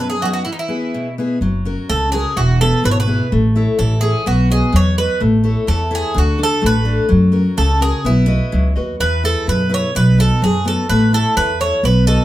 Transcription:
Already playing: steel-string acoustic guitar F#3 B3 D#4
0.00 steel-string acoustic guitar F#2
0.10 bouzouki G#4
0.22 steel-string acoustic guitar F#3 B3 D#4, bouzouki F#4 G#4
0.33 bouzouki F#4
0.45 steel-string acoustic guitar E3, bouzouki E4
0.52 bouzouki D#4
0.59 bouzouki E4
0.68 steel-string acoustic guitar B3 E4 G#4
0.94 steel-string acoustic guitar B2
1.18 steel-string acoustic guitar B3 E4 G#4
1.41 upright bass F#1, steel-string acoustic guitar F#3
1.65 steel-string acoustic guitar C#4 F#4 A#4
1.90 upright bass C#2, steel-string acoustic guitar C#3, bouzouki A4
2.12 steel-string acoustic guitar C#4 F#4 A#4, bouzouki G#4
2.36 upright bass E1, steel-string acoustic guitar E3, bouzouki F#4
2.61 steel-string acoustic guitar B3 E4 G#4, bouzouki A4
2.84 upright bass G#1, steel-string acoustic guitar B2, bouzouki B4
2.91 bouzouki C#5
3.00 bouzouki B4
3.07 steel-string acoustic guitar B3 E4 G#4
3.32 upright bass A1, steel-string acoustic guitar A3
3.56 steel-string acoustic guitar E4 A4 C#5
3.79 upright bass A1, steel-string acoustic guitar E3, bouzouki A4
4.01 steel-string acoustic guitar E4 A4 C#5, bouzouki G#4
4.26 upright bass B1, steel-string acoustic guitar B3, bouzouki F#4
4.50 steel-string acoustic guitar F#4 B4 D#5, bouzouki G#4
4.72 upright bass E2, steel-string acoustic guitar F#3, bouzouki C#5
4.98 steel-string acoustic guitar F#4 B4 D#5, bouzouki B4
5.20 upright bass A1, steel-string acoustic guitar A3
5.44 steel-string acoustic guitar E4 A4 C#5
5.67 upright bass E2, steel-string acoustic guitar E3, bouzouki A4
5.91 steel-string acoustic guitar E4 A4 C#5
5.95 bouzouki G#4
6.14 upright bass D2, steel-string acoustic guitar D3, bouzouki F#4
6.38 steel-string acoustic guitar D4 F#4 A4
6.43 bouzouki A4
6.62 upright bass A1, steel-string acoustic guitar A3
6.66 bouzouki B4
6.85 steel-string acoustic guitar D4 F#4 A4
7.09 upright bass F#2, steel-string acoustic guitar F#3
7.32 steel-string acoustic guitar C#4 F#4 A#4
7.57 upright bass C#2, steel-string acoustic guitar C#3, bouzouki A4
7.81 steel-string acoustic guitar C#4 F#4 A#4, bouzouki G#4
8.04 upright bass B1, steel-string acoustic guitar B3, bouzouki E4
8.27 steel-string acoustic guitar F#4 B4 D#5
8.52 upright bass C#2, steel-string acoustic guitar F#3
8.76 upright bass D#2, steel-string acoustic guitar F#4 B4 D#5
9.00 upright bass E2, steel-string acoustic guitar E3, bouzouki B4
9.23 steel-string acoustic guitar E4 G#4 B4, bouzouki A4
9.47 upright bass F#2, steel-string acoustic guitar B2, bouzouki B4
9.69 steel-string acoustic guitar E4 G#4 B4
9.74 bouzouki C#5
9.95 upright bass B1, steel-string acoustic guitar B2, bouzouki B4
10.18 steel-string acoustic guitar B3 D#4 F#4, bouzouki A4
10.42 upright bass F#2, steel-string acoustic guitar F#3, bouzouki G#4
10.65 steel-string acoustic guitar B3 D#4 F#4, bouzouki A4
10.89 upright bass A1, steel-string acoustic guitar A3, bouzouki B4
11.13 steel-string acoustic guitar E4 A4 C#5, bouzouki A4
11.36 upright bass E2, steel-string acoustic guitar E3, bouzouki B4
11.60 steel-string acoustic guitar E4 A4 C#5, bouzouki C#5
11.83 upright bass B1, steel-string acoustic guitar B3, bouzouki B4
12.07 steel-string acoustic guitar F#4 B4 D#5, bouzouki A4

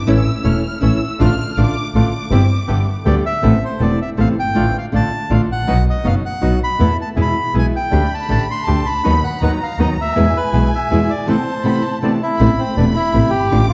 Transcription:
0.07 double bass A1, nylon-string guitar E3 A3 C#4 E4, bandoneon A3 C#4 E4, violin section E6
0.44 double bass E1, nylon-string guitar E3 A3 C#4 E4, bandoneon A3 C#4 E4, violin section F6
0.81 double bass A1, nylon-string guitar E3 A3 C#4 E4, bandoneon A3 C#4 E4, violin section E6
1.19 double bass A1, nylon-string guitar D3 A3 D4 F4, bandoneon A3 D4 F4, violin section F6
1.57 double bass A1, nylon-string guitar D3 A3 D4 F4, bandoneon A3 D4 F4, violin section D6
1.94 double bass A1, nylon-string guitar D3 A3 D4 F4, bandoneon A3 D4 F4, violin section D6
2.31 double bass G1, bandoneon G3 C4 E4, nylon-string guitar G3 C4 E4
2.67 double bass G1, nylon-string guitar D3 G3 B3 G4, bandoneon A3 B3 G4
3.04 double bass D2, nylon-string guitar D3 G3 B3 G4, bandoneon A3 B3 G4 D5
3.26 bandoneon E5
3.42 double bass A1, nylon-string guitar C3 E3 A3 B3 E4, bandoneon B3 C4 A4
3.65 bandoneon C5
3.79 double bass E1, nylon-string guitar C3 E3 A3 B3 E4, bandoneon B3 C4 A4 D5
4.02 bandoneon E5
4.17 double bass A1, nylon-string guitar C3 E3 A3 B3 E4, bandoneon B3 C4 A4 F5
4.38 double bass G1, bandoneon G5
4.55 double bass A1, nylon-string guitar D3 A3 D4 F4, bandoneon A3 D4 F4
4.78 bandoneon F5
4.92 double bass A1, nylon-string guitar D3 A3 D4 F4, bandoneon A3 D4 F4 A5
5.30 double bass A1, nylon-string guitar D3 A3 D4 F4, bandoneon A3 D4 F4
5.34 bandoneon F5
5.49 double bass A1, bandoneon F#5
5.67 double bass B1, nylon-string guitar B2 F#3 B3 D#4 F#4, bandoneon B3 D#4 F#4
5.90 bandoneon D#5
6.04 double bass F#1, nylon-string guitar B2 F#3 B3 D#4 F#4, bandoneon B3 D#4 F#4 F5
6.26 bandoneon F#5
6.41 double bass B1, nylon-string guitar B2 F#3 B3 D#4 F#4, bandoneon B3 D#4 F#4
6.64 bandoneon B5
6.79 double bass E2, nylon-string guitar E3 A3 B3 E4, bandoneon B3 E4 A4
7.02 bandoneon A5
7.15 double bass E2, nylon-string guitar B2 E3 G#3 B3 E4, bandoneon B3 E4 G#4
7.22 bandoneon B5
7.53 double bass B1, nylon-string guitar B2 E3 G#3 B3 E4, bandoneon B3 E4 G#4
7.59 bandoneon G#5
7.76 bandoneon G5
7.90 double bass D2, nylon-string guitar D3 A3 D4 G4, bandoneon A3 D4 G4, violin section B5
8.14 bandoneon A5
8.28 double bass A1, nylon-string guitar D3 A3 D4 G4, bandoneon A3 D4 G4 A5
8.51 bandoneon C6
8.65 double bass D2, nylon-string guitar D3 A3 D4 G4, bandoneon A3 D4 G4, violin section A5
8.86 double bass C#2, bandoneon B5
9.03 double bass D#2, nylon-string guitar D#3 F#3 B3 D#4 B4, bandoneon B3 D#4 F#4, violin section B5
9.24 bandoneon F#5
9.41 double bass D#2, nylon-string guitar D#3 F#3 B3 D#4 B4, bandoneon B3 D#4 F#4 F#5, violin section A#5
9.63 bandoneon F5
9.78 double bass D#2, nylon-string guitar D#3 F#3 B3 D#4 B4, bandoneon B3 D#4 F#4 D#5
9.98 double bass D2, bandoneon E5
10.15 double bass E2, nylon-string guitar B2 E3 G#3 B3 E4, bandoneon B3 E4 G#4, violin section G#5
10.37 bandoneon B4
10.53 double bass B1, nylon-string guitar B2 E3 G#3 B3 E4, bandoneon B3 E4 G#4
10.75 bandoneon E5
10.91 double bass E2, nylon-string guitar B2 E3 G#3 B3 E4, bandoneon B3 E4 G#4
11.10 bandoneon D5
11.27 nylon-string guitar C3 E3 A3 B3 E4, bandoneon B3 C4 A4 C5, violin section A5
11.64 nylon-string guitar C3 E3 A3 B3 E4, bandoneon B3 C4 A4, violin section B5
11.83 violin section A5
12.02 nylon-string guitar C3 E3 A3 B3 E4, bandoneon B3 C4 D4 A4
12.23 bandoneon E4
12.37 double bass A1, nylon-string guitar C3 E3 A3 B3, violin section B5
12.41 nylon-string guitar E4
12.59 bandoneon C4
12.77 double bass E1, nylon-string guitar C3 E3 A3 B3 E4, bandoneon D4
12.96 bandoneon E4
13.13 double bass A1, nylon-string guitar C3 E3 A3 B3 E4
13.30 double bass G1, bandoneon G4
13.50 double bass A1, nylon-string guitar D3 A3 D4 F4, violin section D6
13.69 bandoneon F4

